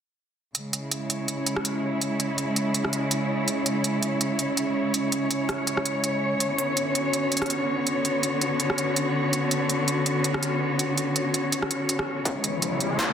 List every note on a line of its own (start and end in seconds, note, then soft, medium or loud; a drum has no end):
0.55 6.40 C#3 medium
0.55 6.40 G#3 medium
0.55 12.26 C#4 medium
0.55 closed hi-hat medium
0.73 closed hi-hat medium
0.80 7.49 E4 medium
0.92 closed hi-hat medium
1.09 13.13 C#5 medium
1.09 closed hi-hat medium
1.28 closed hi-hat medium
1.47 closed hi-hat medium
1.56 cross-stick soft
1.65 closed hi-hat medium
2.01 closed hi-hat medium
2.20 closed hi-hat medium
2.38 closed hi-hat medium
2.56 closed hi-hat medium
2.74 closed hi-hat medium
2.85 cross-stick soft
2.93 closed hi-hat medium
3.11 closed hi-hat medium
3.48 closed hi-hat medium
3.66 closed hi-hat medium
3.84 closed hi-hat medium
4.03 closed hi-hat medium
4.21 closed hi-hat medium
4.39 closed hi-hat medium
4.57 closed hi-hat medium
4.94 closed hi-hat medium
5.12 closed hi-hat medium
5.31 closed hi-hat medium
5.49 cross-stick medium
5.49 closed hi-hat medium
5.67 closed hi-hat medium
5.77 cross-stick soft
5.86 closed hi-hat medium
6.04 closed hi-hat medium
6.40 12.26 D3 medium
6.40 closed hi-hat medium
6.49 13.13 B3 medium
6.58 closed hi-hat medium
6.64 12.26 F#4 medium
6.77 closed hi-hat medium
6.95 closed hi-hat medium
7.13 closed hi-hat medium
7.32 closed hi-hat medium
7.37 closed hi-hat soft
7.42 cross-stick soft
7.46 closed hi-hat soft
7.50 closed hi-hat medium
7.87 closed hi-hat medium
8.05 closed hi-hat medium
8.23 closed hi-hat medium
8.41 closed hi-hat medium
8.60 closed hi-hat medium
8.70 cross-stick soft
8.78 closed hi-hat medium
8.96 closed hi-hat medium
9.33 closed hi-hat medium
9.51 closed hi-hat medium
9.70 closed hi-hat medium
9.88 closed hi-hat medium
10.06 closed hi-hat medium
10.24 closed hi-hat medium
10.34 cross-stick soft
10.43 closed hi-hat medium
10.79 closed hi-hat medium
10.98 closed hi-hat medium
11.16 closed hi-hat medium
11.34 closed hi-hat medium
11.52 closed hi-hat medium
11.62 cross-stick soft
11.71 closed hi-hat medium
11.89 closed hi-hat medium
11.99 cross-stick medium
12.25 13.13 C#3 medium
12.25 kick loud
12.25 closed hi-hat medium
12.25 riser medium
12.32 13.13 G#3 medium
12.44 13.13 E4 medium
12.44 closed hi-hat medium
12.62 closed hi-hat medium
12.80 closed hi-hat medium
12.99 snare loud
12.99 closed hi-hat medium